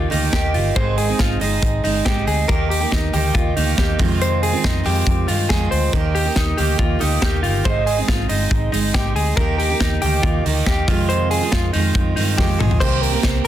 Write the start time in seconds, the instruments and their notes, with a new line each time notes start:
Already playing: steel-string acoustic guitar D#4 G4, clean electric guitar F4
0.10 fingered electric bass D2, steel-string acoustic guitar D#3 A#3 D#4 G4, clean electric guitar D#4, open hi-hat
0.33 fingered electric bass D#2, steel-string acoustic guitar D#3 A#3 D#4 G4, clean electric guitar G4, kick, snare
0.54 fingered electric bass G1, clean electric guitar F4, open hi-hat
0.75 fingered electric bass G#1, steel-string acoustic guitar G#2 D#3 G#3 C4 D#4 G#4, clean electric guitar C5, kick, closed hi-hat
0.98 clean electric guitar G#4, open hi-hat
1.09 steel-string acoustic guitar G#3 C4 D#4 G#4
1.19 fingered electric bass G#1, clean electric guitar F4, kick, snare
1.40 fingered electric bass G1, steel-string acoustic guitar G#3 C4 D#4 G#4, clean electric guitar D#4, open hi-hat
1.63 fingered electric bass G#1, kick, closed hi-hat
1.84 fingered electric bass G1, steel-string acoustic guitar G#3 C4 D#4 G#4, clean electric guitar D#4, open hi-hat
2.05 fingered electric bass G#1, steel-string acoustic guitar G#3 C4 D#4 G#4, clean electric guitar G4, kick, snare
2.27 fingered electric bass D2, clean electric guitar G#4, open hi-hat
2.48 fingered electric bass D#2, steel-string acoustic guitar D#3 A#3 D#4 G4, clean electric guitar A#4, kick, closed hi-hat
2.70 clean electric guitar G4, open hi-hat
2.80 steel-string acoustic guitar A#3 D#4 G4
2.92 fingered electric bass D#2, clean electric guitar D#4, kick, snare
3.13 fingered electric bass D2, steel-string acoustic guitar D#3 A#3 D#4 G4, clean electric guitar G4, open hi-hat
3.34 fingered electric bass D#2, clean electric guitar F4, kick, closed hi-hat
3.57 fingered electric bass D2, steel-string acoustic guitar D#3 A#3 D#4 G4, clean electric guitar D#4, open hi-hat
3.77 steel-string acoustic guitar D#3 A#3 D#4 G4, clean electric guitar G4, kick, snare
3.99 steel-string acoustic guitar F2 C3 D#3 G#3 C4 F4, fingered electric bass F2, clean electric guitar F4, kick, open hi-hat
4.22 clean electric guitar C5, closed hi-hat
4.43 clean electric guitar G#4, open hi-hat
4.52 steel-string acoustic guitar D#3 G#3 C4 F4
4.64 fingered electric bass F2, clean electric guitar D#4, kick, snare
4.84 fingered electric bass F2, steel-string acoustic guitar D#3 G#3 C4 F4, clean electric guitar G4, open hi-hat
5.06 fingered electric bass F2, kick, closed hi-hat
5.28 fingered electric bass G2, steel-string acoustic guitar D#3 G#3 C4 F4, clean electric guitar F4, open hi-hat
5.49 fingered electric bass F2, steel-string acoustic guitar D#3 G#3 C4, clean electric guitar G#4, kick, snare
5.54 steel-string acoustic guitar F4
5.71 fingered electric bass D2, clean electric guitar C5, open hi-hat
5.93 fingered electric bass D#2, steel-string acoustic guitar D#3 A#3 D#4 G4, clean electric guitar A#4, kick, closed hi-hat
6.15 clean electric guitar G4, open hi-hat
6.26 steel-string acoustic guitar A#3 D#4 G4
6.36 fingered electric bass D#2, clean electric guitar D#4, kick, snare, closed hi-hat
6.57 fingered electric bass D2, steel-string acoustic guitar D#3 A#3 D#4 G4, clean electric guitar G4, open hi-hat
6.79 fingered electric bass D#2, clean electric guitar F4, kick
6.99 fingered electric bass D2, steel-string acoustic guitar D#3 A#3 D#4 G4, clean electric guitar D#4, open hi-hat
7.21 fingered electric bass D#2, steel-string acoustic guitar D#3 A#3 D#4 G4, clean electric guitar G4, kick, snare, closed hi-hat
7.43 fingered electric bass G1, clean electric guitar F4, open hi-hat
7.64 fingered electric bass G#1, steel-string acoustic guitar G#2 D#3 G#3 C4 D#4 G#4, clean electric guitar C5, kick, closed hi-hat
7.86 clean electric guitar G#4, open hi-hat
7.97 steel-string acoustic guitar G#3 C4 D#4 G#4
8.08 fingered electric bass G#1, clean electric guitar F4, kick, snare, closed hi-hat
8.29 fingered electric bass G1, steel-string acoustic guitar G#3 C4 D#4 G#4, clean electric guitar D#4, open hi-hat
8.51 fingered electric bass G#1, kick
8.72 fingered electric bass G1, steel-string acoustic guitar G#3 C4 D#4 G#4, clean electric guitar D#4, open hi-hat
8.94 steel-string acoustic guitar G#3 C4 D#4 G#4, clean electric guitar G4, kick, snare
9.15 fingered electric bass D2, clean electric guitar G#4, open hi-hat
9.37 fingered electric bass D#2, steel-string acoustic guitar D#3 A#3 D#4 G4, clean electric guitar A#4, kick, closed hi-hat
9.58 clean electric guitar G4, open hi-hat
9.70 steel-string acoustic guitar A#3 D#4 G4
9.80 fingered electric bass D#2, clean electric guitar D#4, kick, snare, closed hi-hat
10.02 fingered electric bass D2, steel-string acoustic guitar D#3 A#3 D#4, clean electric guitar G4, open hi-hat
10.06 steel-string acoustic guitar G4
10.23 fingered electric bass D#2, clean electric guitar F4, kick, closed hi-hat
10.45 fingered electric bass D2, steel-string acoustic guitar D#3 A#3 D#4, clean electric guitar D#4, open hi-hat
10.49 steel-string acoustic guitar G4
10.66 fingered electric bass D#2, steel-string acoustic guitar D#3 A#3 D#4 G4, clean electric guitar G4, kick, snare
10.88 fingered electric bass F2, steel-string acoustic guitar F2 C3 D#3 G#3 C4 F4, clean electric guitar F4, kick, open hi-hat
11.09 clean electric guitar C5, closed hi-hat
11.31 clean electric guitar G#4, open hi-hat
11.42 steel-string acoustic guitar D#3 G#3 C4 F4
11.52 fingered electric bass F2, clean electric guitar F4, kick, snare
11.73 fingered electric bass F2, steel-string acoustic guitar D#3 G#3 C4, clean electric guitar D#4, open hi-hat
11.78 steel-string acoustic guitar F4
11.95 fingered electric bass F2, kick, closed hi-hat
12.16 fingered electric bass G2, steel-string acoustic guitar D#3 G#3 C4 F4, clean electric guitar D#4, open hi-hat
12.38 fingered electric bass F2, steel-string acoustic guitar D#3 G#3 C4 F4, clean electric guitar G4, kick, snare
12.59 fingered electric bass A#1, clean electric guitar G#4, mid tom
12.71 floor tom
12.80 fingered electric bass C2, steel-string acoustic guitar C3 D#3 A#3 C4 G4, clean electric guitar C5, kick, crash
13.02 clean electric guitar A#4, open hi-hat
13.12 steel-string acoustic guitar A#3 C4 G4
13.23 fingered electric bass C2, clean electric guitar C5, kick, snare